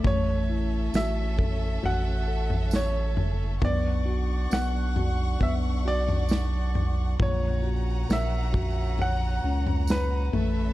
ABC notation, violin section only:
X:1
M:4/4
L:1/8
Q:1/4=67
K:F#phr
V:1 name="Violin section"
[CAe]8 | [Dfc']8 | [Cf^a]6- [Cfa] [C=Ae] |]